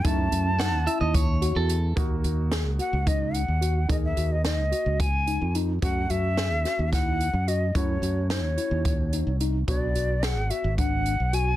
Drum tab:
HH |xxxxxxx|xxxxxxx|xxxxxxx|xxxxxxx|
SD |--o----|--o----|--o----|--ooo--|
BD |o---o--|o---o--|o---o--|o---o--|

HH |xxxxxxx|xxxxxxx|
SD |--o----|--o----|
BD |o---o--|o---o--|